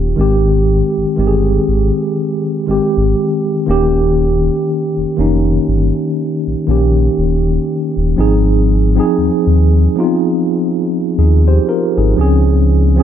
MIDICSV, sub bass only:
0, 0, Header, 1, 2, 480
1, 0, Start_track
1, 0, Key_signature, -4, "major"
1, 0, Tempo, 1000000
1, 85, Time_signature, 4, 2, 24, 8
1, 6254, End_track
2, 0, Start_track
2, 0, Title_t, "Sub bass"
2, 0, Program_c, 0, 38
2, 0, Note_on_c, 0, 27, 87
2, 67, Note_off_c, 0, 27, 0
2, 87, Note_on_c, 0, 32, 98
2, 396, Note_off_c, 0, 32, 0
2, 466, Note_on_c, 0, 31, 44
2, 506, Note_off_c, 0, 31, 0
2, 567, Note_on_c, 0, 31, 89
2, 762, Note_off_c, 0, 31, 0
2, 807, Note_on_c, 0, 32, 93
2, 920, Note_off_c, 0, 32, 0
2, 1287, Note_on_c, 0, 32, 48
2, 1342, Note_off_c, 0, 32, 0
2, 1426, Note_on_c, 0, 32, 88
2, 1508, Note_off_c, 0, 32, 0
2, 1767, Note_on_c, 0, 27, 98
2, 2159, Note_off_c, 0, 27, 0
2, 2386, Note_on_c, 0, 29, 45
2, 2426, Note_off_c, 0, 29, 0
2, 2488, Note_on_c, 0, 29, 96
2, 2683, Note_off_c, 0, 29, 0
2, 2727, Note_on_c, 0, 31, 86
2, 2840, Note_off_c, 0, 31, 0
2, 3106, Note_on_c, 0, 34, 46
2, 3146, Note_off_c, 0, 34, 0
2, 3206, Note_on_c, 0, 34, 96
2, 3402, Note_off_c, 0, 34, 0
2, 3445, Note_on_c, 0, 27, 85
2, 3641, Note_off_c, 0, 27, 0
2, 3825, Note_on_c, 0, 27, 100
2, 3907, Note_off_c, 0, 27, 0
2, 3926, Note_on_c, 0, 32, 104
2, 4318, Note_off_c, 0, 32, 0
2, 4406, Note_on_c, 0, 39, 52
2, 4462, Note_off_c, 0, 39, 0
2, 4545, Note_on_c, 0, 39, 84
2, 4741, Note_off_c, 0, 39, 0
2, 5368, Note_on_c, 0, 39, 93
2, 5563, Note_off_c, 0, 39, 0
2, 5747, Note_on_c, 0, 32, 92
2, 5829, Note_off_c, 0, 32, 0
2, 5849, Note_on_c, 0, 37, 112
2, 6240, Note_off_c, 0, 37, 0
2, 6254, End_track
0, 0, End_of_file